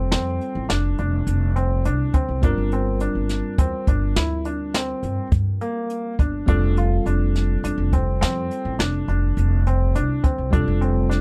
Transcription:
Already playing: upright bass F1, tine electric piano G3 C4 F4 A4
0.11 upright bass F2, grand piano C4, snare, closed hi-hat
0.41 closed hi-hat
0.55 upright bass A1
0.69 upright bass F1, grand piano D4, snare, closed hi-hat
0.98 upright bass F1, grand piano D4, closed hi-hat
1.27 upright bass F1, closed hi-hat
1.56 grand piano C4, closed hi-hat
1.85 upright bass C2, grand piano D4, closed hi-hat
2.14 upright bass D2, grand piano C4, kick, closed hi-hat
2.29 upright bass C2
2.42 upright bass G1, tine electric piano G3 C4 F4 A#4, grand piano D4, kick, closed hi-hat
2.58 upright bass G1
2.72 grand piano C4, closed hi-hat
3.00 grand piano D4, closed hi-hat
3.15 upright bass G1
3.29 snare, closed hi-hat
3.58 upright bass E2, grand piano C4, kick, closed hi-hat
3.87 upright bass G1, grand piano D4, kick, closed hi-hat
4.16 upright bass D2, grand piano E4, snare, closed hi-hat
4.45 grand piano D4, closed hi-hat
4.74 grand piano C4, snare, closed hi-hat
5.03 upright bass G2, closed hi-hat
5.32 upright bass G2, kick, closed hi-hat
5.61 grand piano A#3, closed hi-hat
5.90 closed hi-hat
6.19 upright bass G1, grand piano D4, kick, closed hi-hat
6.46 upright bass F1, tine electric piano G3 C4 F4 A4, grand piano D4, kick, closed hi-hat
6.77 grand piano F4, closed hi-hat
7.06 upright bass F1, grand piano D4, closed hi-hat
7.35 snare, closed hi-hat
7.64 upright bass F1, grand piano D4, closed hi-hat
7.78 upright bass F1
7.93 grand piano C4, kick, closed hi-hat
8.21 upright bass F2, grand piano C4, snare, closed hi-hat
8.51 closed hi-hat
8.65 upright bass A1
8.79 upright bass F1, grand piano D4, snare, closed hi-hat
9.08 upright bass F1, grand piano D4, closed hi-hat
9.37 upright bass F1, closed hi-hat
9.66 grand piano C4, closed hi-hat
9.95 upright bass C2, grand piano D4, closed hi-hat
10.24 upright bass D2, grand piano C4, kick, closed hi-hat
10.38 upright bass C2
10.51 upright bass F1, tine electric piano G3 C4 F4 A4, grand piano D4, kick, closed hi-hat
10.68 upright bass F1
10.81 grand piano C4, closed hi-hat
11.10 grand piano D4, snare, closed hi-hat

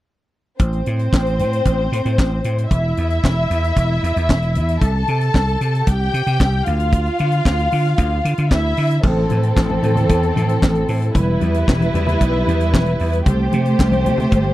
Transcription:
0.60 slap bass A1, string section C4 C5, kick, closed hi-hat
0.73 closed hi-hat
0.86 slap bass A2, closed hi-hat
0.99 closed hi-hat
1.13 slap bass A1, kick, snare, clap
1.27 closed hi-hat
1.39 slap bass A2, closed hi-hat
1.53 closed hi-hat
1.65 slap bass A1, kick, closed hi-hat
1.92 slap bass A2, closed hi-hat
2.05 slap bass A2, closed hi-hat
2.18 slap bass A1, kick, snare, clap
2.44 slap bass A2, closed hi-hat
2.58 closed hi-hat
2.71 slap bass E1, string section E4 E5, kick, closed hi-hat
2.97 slap bass E2, closed hi-hat
3.10 closed hi-hat
3.24 slap bass E1, kick, snare, clap
3.50 slap bass E2, closed hi-hat
3.64 closed hi-hat
3.76 slap bass E1, kick, closed hi-hat
4.03 slap bass E2, closed hi-hat
4.16 slap bass E2, closed hi-hat
4.29 slap bass E1, kick, snare, clap
4.42 closed hi-hat
4.55 slap bass E2, closed hi-hat
4.69 closed hi-hat
4.81 slap bass C2, string section A4 A5, kick, closed hi-hat
5.08 slap bass C3, closed hi-hat
5.21 closed hi-hat
5.34 slap bass C2, kick, snare, clap
5.48 closed hi-hat
5.61 slap bass C3, closed hi-hat
5.75 closed hi-hat
5.87 slap bass C2, string section G4 G5, kick, closed hi-hat
6.14 slap bass C3, closed hi-hat
6.27 slap bass C3, closed hi-hat
6.40 slap bass C2, kick, snare, clap
6.66 slap bass D2, string section F4 F5, closed hi-hat
6.80 closed hi-hat
6.93 kick, closed hi-hat
7.06 closed hi-hat
7.19 slap bass D3, closed hi-hat
7.32 closed hi-hat
7.45 slap bass D2, kick, snare, clap
7.59 closed hi-hat
7.72 slap bass D3, open hi-hat
7.86 snare, closed hi-hat
7.98 slap bass D2, kick, closed hi-hat
8.25 slap bass D3, closed hi-hat
8.38 slap bass D3, closed hi-hat
8.51 slap bass D2, string section E4 E5, kick, snare, clap
8.77 slap bass D3, open hi-hat
8.91 closed hi-hat
9.03 slap bass A1, string section E3 C4 A4, kick, crash, low conga
9.29 slap bass A2, closed hi-hat, high conga
9.43 closed hi-hat
9.57 slap bass A1, kick, snare, clap, muted conga, high conga
9.70 muted conga, high conga
9.83 slap bass A2, closed hi-hat, high conga, low conga
9.95 closed hi-hat, low conga
10.09 slap bass E2, kick, closed hi-hat
10.23 closed hi-hat
10.36 slap bass A2, closed hi-hat, high conga
10.49 closed hi-hat
10.62 slap bass A1, kick, snare, clap, high conga
10.74 closed hi-hat, muted conga
10.88 slap bass A2, open hi-hat
11.02 closed hi-hat
11.15 slap bass E1, string section G3 E4 B4, kick, closed hi-hat, low conga
11.28 muted conga
11.40 slap bass E2, closed hi-hat, high conga
11.54 closed hi-hat
11.68 slap bass E1, kick, snare, clap, muted conga, high conga
11.81 closed hi-hat, muted conga, high conga
11.94 slap bass E2, closed hi-hat, high conga, low conga
12.07 closed hi-hat, low conga
12.20 slap bass B1, kick, closed hi-hat, muted conga
12.34 muted conga
12.47 slap bass E2, closed hi-hat, high conga
12.60 closed hi-hat
12.73 slap bass E1, kick, snare, clap, muted conga, high conga
12.86 closed hi-hat
12.99 slap bass E2, open hi-hat
13.13 closed hi-hat
13.26 slap bass C2, string section A3 G4 C5, kick, closed hi-hat, muted conga, low conga
13.39 muted conga
13.52 slap bass C3, closed hi-hat, high conga
13.66 closed hi-hat
13.79 slap bass C2, kick, snare, clap, high conga
13.92 closed hi-hat, high conga
14.05 slap bass C3, closed hi-hat, high conga, low conga
14.18 snare, closed hi-hat, low conga
14.31 slap bass G1, kick, closed hi-hat, muted conga
14.44 muted conga

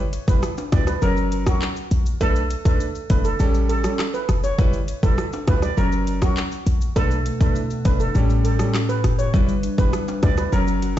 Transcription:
Already playing: 808-style bass G1
0.13 closed hi-hat, shaker
0.28 808-style bass G1, grand piano G3 E4 B4, steel pan B4, kick, shaker
0.43 cross-stick, shaker
0.58 high timbale, shaker
0.72 808-style bass D2, grand piano G3 E4 B4, steel pan D5, kick, cross-stick, closed hi-hat, high timbale, shaker
0.87 steel pan B4, cross-stick, shaker
1.02 808-style bass F#1, grand piano F#3 C#4 A#4, steel pan A#4, shaker
1.17 shaker
1.32 closed hi-hat, shaker
1.46 grand piano F#3 C#4 A#4, steel pan F#4, kick, cross-stick, shaker
1.61 clap, shaker
1.76 shaker
1.91 808-style bass A#1, closed hi-hat, shaker
2.06 shaker
2.21 808-style bass B1, grand piano A3 D4 B4, steel pan A4, kick, shaker
2.36 shaker
2.50 closed hi-hat, shaker
2.65 808-style bass A1, grand piano A3 D4 B4, steel pan A4, kick, shaker
2.80 shaker
2.95 shaker
3.10 808-style bass F#1, grand piano A3 D4 B4, steel pan B4, kick, closed hi-hat, shaker
3.25 steel pan A4, shaker
3.39 808-style bass A1, grand piano G3 C#4 A4, shaker
3.54 shaker
3.69 steel pan A4, closed hi-hat, shaker
3.84 grand piano G3 C#4 A4, cross-stick, shaker
3.99 cross-stick, clap, shaker
4.14 steel pan B4, shaker
4.29 808-style bass F#1, cross-stick, closed hi-hat, shaker
4.44 steel pan C#5, shaker
4.58 808-style bass G1, grand piano G3 E4 B4, kick, shaker
4.73 shaker
4.88 closed hi-hat, shaker
5.03 808-style bass G1, grand piano G3 E4 B4, steel pan A4, kick, shaker
5.18 cross-stick, shaker
5.33 high timbale, shaker
5.47 808-style bass D2, grand piano G3 E4 B4, steel pan B4, kick, cross-stick, closed hi-hat, high timbale, shaker
5.62 steel pan D5, cross-stick, shaker
5.77 808-style bass F#1, grand piano F#3 C#4 A#4, steel pan A#4, shaker
5.92 shaker
6.07 closed hi-hat, shaker
6.22 grand piano F#3 C#4 A#4, steel pan F#4, kick, cross-stick, shaker
6.37 clap, shaker
6.52 shaker
6.67 808-style bass A#1, closed hi-hat, shaker
6.81 shaker
6.96 808-style bass B1, clean electric guitar B2 F#4, grand piano A3 D4 B4, steel pan A4, kick, shaker
7.11 shaker
7.26 clean electric guitar A3, closed hi-hat, shaker
7.40 808-style bass A1, grand piano A3 D4 B4, steel pan A4, kick, shaker
7.55 clean electric guitar E4, shaker
7.70 clean electric guitar F#4, shaker
7.85 808-style bass F#1, grand piano A3 D4 B4, clean electric guitar D4, steel pan B4, kick, closed hi-hat, shaker
8.00 steel pan A4, shaker
8.15 808-style bass A1, clean electric guitar A2, grand piano G3 C#4 A4, shaker
8.30 shaker
8.44 clean electric guitar G4, steel pan A4, closed hi-hat, shaker
8.59 grand piano G3 C#4 A4, cross-stick, shaker
8.74 clean electric guitar C#4, cross-stick, clap, shaker
8.89 steel pan B4, shaker
9.04 808-style bass F#1, clean electric guitar G4, cross-stick, closed hi-hat, shaker
9.19 steel pan C#5, shaker
9.33 808-style bass G1, grand piano G3 E4 B4, clean electric guitar G3 B4, kick, shaker
9.49 shaker
9.63 clean electric guitar D4, closed hi-hat, shaker
9.78 808-style bass G1, grand piano G3 E4 B4, steel pan B4, kick, shaker
9.93 clean electric guitar B4, cross-stick, shaker
10.08 high timbale, shaker
10.22 808-style bass D2, grand piano G3 E4 B4, clean electric guitar E4, steel pan D5, kick, cross-stick, closed hi-hat, high timbale, shaker
10.37 steel pan B4, cross-stick, shaker
10.52 808-style bass F#1, grand piano F#3 C#4 A#4, clean electric guitar F#3, steel pan A#4, shaker
10.67 shaker
10.82 clean electric guitar F#4, closed hi-hat, shaker

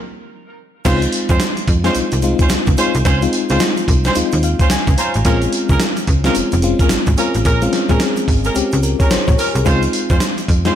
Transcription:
0.85 fm bass C#2, fm electric piano G#3 C4 D#4 F4, horn section C#4 F4 C5, kick, closed hi-hat, crash, tambourine, shaker
1.02 closed hi-hat, shaker
1.12 closed hi-hat, tambourine
1.29 fm bass F2, horn section C#4 F4 C5, kick, closed hi-hat, shaker
1.40 snare, closed hi-hat, tambourine, shaker
1.57 closed hi-hat, shaker
1.67 fm bass F2, kick, closed hi-hat, tambourine
1.84 fm electric piano G#3 C4 D#4 F4, horn section C#4 F4 C5, snare, closed hi-hat, shaker
1.95 fm bass C2, closed hi-hat, tambourine, shaker
2.12 fm bass C2, closed hi-hat, shaker
2.22 fm electric piano G#3 C4 D#4 F4, closed hi-hat, shaker
2.39 horn section C#4 F4 C5, kick, closed hi-hat, shaker
2.49 fm bass C#2, snare, closed hi-hat, tambourine, shaker
2.66 fm bass C#2, kick, closed hi-hat, shaker
2.77 fm electric piano G#3 C4 D#4 F4, horn section C#4 F4 C5, closed hi-hat, tambourine, shaker
2.94 fm bass C2, closed hi-hat, shaker
3.05 fm bass C#2, horn section C#4 F4 C5, kick, closed hi-hat, tambourine, shaker
3.22 fm electric piano G#3 C4 D#4 F4, closed hi-hat, shaker
3.33 closed hi-hat, tambourine
3.49 fm bass C#2, fm electric piano G#3 C4 D#4 F4, horn section C#4 F4 C5, closed hi-hat, shaker
3.60 snare, closed hi-hat, tambourine, shaker
3.77 closed hi-hat, shaker
3.88 fm bass C2, kick, closed hi-hat, tambourine
4.04 horn section C#4 F4 C5, snare, closed hi-hat, shaker
4.15 fm bass D#2, fm electric piano G#3 C4 D#4 F4, closed hi-hat, tambourine, shaker
4.32 fm bass D#2, closed hi-hat, shaker
4.43 fm electric piano F5, closed hi-hat, shaker
4.59 horn section C#4 F4 C5, kick, closed hi-hat, shaker
4.70 fm bass C#2, fm electric piano G#5, snare, closed hi-hat, tambourine, shaker
4.87 fm bass C#2, kick, closed hi-hat, shaker
4.98 horn section C#4 F4 C5, fm electric piano A#5, closed hi-hat, tambourine, shaker
5.14 fm bass A1, closed hi-hat, shaker
5.25 fm bass A#1, fm electric piano G#3 C4 C#4 F4, horn section C#4 G#4 A#4, kick, closed hi-hat, tambourine, shaker
5.42 closed hi-hat, shaker
5.53 closed hi-hat, tambourine
5.69 fm bass C#2, horn section C#4 G#4 A#4, kick, closed hi-hat, shaker
5.80 snare, closed hi-hat, tambourine, shaker
5.97 closed hi-hat, shaker
6.07 fm bass C#2, kick, closed hi-hat, tambourine
6.24 fm electric piano G#3 C4 C#4 F4, horn section C#4 G#4 A#4, snare, closed hi-hat, shaker
6.35 fm bass F1, closed hi-hat, tambourine, shaker
6.52 fm bass F1, closed hi-hat, shaker
6.62 fm electric piano G#3 C4 C#4 F4, closed hi-hat, shaker
6.79 horn section C#4 G#4 A#4, kick, closed hi-hat, shaker
6.89 fm bass G#1, snare, closed hi-hat, tambourine, shaker
7.07 fm bass G#1, kick, closed hi-hat, shaker
7.17 fm electric piano G#3 C4 C#4 F4, horn section C#4 G#4 A#4, closed hi-hat, tambourine, shaker
7.34 fm bass A1, closed hi-hat, shaker
7.45 fm bass A#1, horn section C#4 G#4 A#4, kick, closed hi-hat, tambourine, shaker
7.62 fm electric piano G#3 C4 C#4 F4, closed hi-hat, shaker
7.73 snare, closed hi-hat, tambourine
7.89 fm bass A#1, fm electric piano G#3 C4 C#4 G#4, horn section C#4 G#4 A#4, kick, closed hi-hat, shaker
8.00 snare, closed hi-hat, tambourine, shaker
8.16 closed hi-hat, shaker
8.28 fm bass G#1, kick, open hi-hat, tambourine
8.44 horn section C#4 G#4 A#4, closed hi-hat, shaker
8.55 fm bass C#2, fm electric piano G#3 C4 C#4 G4, closed hi-hat, tambourine, shaker
8.72 fm bass C#2, closed hi-hat, shaker
8.83 fm electric piano A#4, closed hi-hat, shaker
8.99 horn section C#4 G#4 A#4, fm electric piano C#5, kick, closed hi-hat, shaker
9.10 fm bass A#1, fm electric piano C5, snare, closed hi-hat, tambourine, shaker
9.27 fm bass A#1, fm electric piano C#5, kick, closed hi-hat, shaker
9.38 horn section C#4 G#4 A#4, fm electric piano A#4, open hi-hat, tambourine, shaker
9.55 fm bass C2, fm electric piano G#4, closed hi-hat, shaker
9.65 fm bass C#2, fm electric piano G#3 C4 D#4 F4, horn section C#4 F4 C5, kick, closed hi-hat, tambourine, shaker
9.82 closed hi-hat, shaker
9.93 closed hi-hat, tambourine
10.10 fm bass F2, horn section C#4 F4 C5, kick, closed hi-hat, shaker
10.20 snare, closed hi-hat, tambourine, shaker
10.38 closed hi-hat, shaker
10.48 fm bass F2, kick, closed hi-hat, tambourine
10.65 fm electric piano G#3 C4 D#4 F4, horn section C#4 F4 C5, snare, closed hi-hat, shaker

